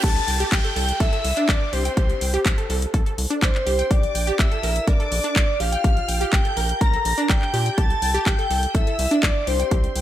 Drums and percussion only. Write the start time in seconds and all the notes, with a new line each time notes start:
0.04 kick, closed hi-hat, crash
0.16 closed hi-hat
0.28 open hi-hat
0.40 closed hi-hat
0.52 kick, clap, closed hi-hat
0.65 closed hi-hat
0.76 open hi-hat
0.89 closed hi-hat
1.00 kick, closed hi-hat
1.13 closed hi-hat
1.25 open hi-hat
1.37 closed hi-hat
1.49 kick, clap, closed hi-hat
1.73 open hi-hat
1.85 closed hi-hat
1.97 kick, closed hi-hat
2.10 closed hi-hat
2.21 open hi-hat
2.34 closed hi-hat
2.45 kick, clap, closed hi-hat
2.58 closed hi-hat
2.70 open hi-hat
2.82 closed hi-hat
2.94 kick, closed hi-hat
3.06 closed hi-hat
3.18 open hi-hat
3.31 closed hi-hat
3.42 kick, clap, closed hi-hat
3.55 clap
3.67 open hi-hat
3.79 closed hi-hat
3.91 kick, closed hi-hat
4.03 closed hi-hat
4.15 open hi-hat
4.27 closed hi-hat
4.39 kick, clap, closed hi-hat
4.52 closed hi-hat
4.63 open hi-hat
4.76 closed hi-hat
4.88 kick, closed hi-hat
5.00 closed hi-hat
5.12 open hi-hat
5.24 closed hi-hat
5.36 kick, clap, closed hi-hat
5.60 open hi-hat
5.73 closed hi-hat
5.84 kick, closed hi-hat
5.97 closed hi-hat
6.09 open hi-hat
6.21 closed hi-hat
6.33 kick, clap, closed hi-hat
6.45 closed hi-hat
6.57 open hi-hat
6.69 closed hi-hat
6.81 kick, closed hi-hat
6.94 closed hi-hat
7.05 open hi-hat
7.18 closed hi-hat
7.29 kick, clap, closed hi-hat
7.42 clap
7.54 open hi-hat
7.66 closed hi-hat
7.78 kick, closed hi-hat
7.90 closed hi-hat
8.02 open hi-hat
8.15 closed hi-hat
8.26 kick, clap, closed hi-hat
8.39 closed hi-hat
8.51 open hi-hat
8.63 closed hi-hat
8.75 kick, closed hi-hat
8.87 closed hi-hat
8.99 open hi-hat
9.11 closed hi-hat
9.23 kick, clap, closed hi-hat
9.47 open hi-hat
9.60 closed hi-hat
9.71 kick, closed hi-hat
9.84 closed hi-hat
9.96 open hi-hat